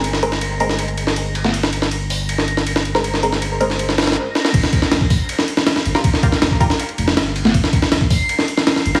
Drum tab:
CC |--------------------------------|--------------------------------|--------------------------------|x-------------------------------|
RD |x---x---x---x---x-x-x---x---x---|x---x---x-------x---x---x---x---|x---x---x---x---x---xxxx--------|x---x---x-------x---x---x---x---|
HH |--------------------------------|------------o-------------------|--------------------------------|------------o-------------------|
SD |--o---o-------o-------o-------o-|--o---o-----------o---o---o---o-|--o---o-------o---o-oooo----o-o-|--o---o-o---------o---o-o-o---o-|
BD |--------------------------------|--------------------------------|--------------------------------|o---o-----o-o-------------------|

CC |--------------------------------|--------------------------------|
RD |x---x---x---x---x-x-x---x---x---|x---x---x-------x---x---x---x---|
HH |--------------------------------|------------o-------------------|
SD |--o---o-o-----o-------o-o-----o-|--o---o-o---------o---o-o-o---o-|
BD |o---o-----o-o-------------------|o---o-----o-o-------------------|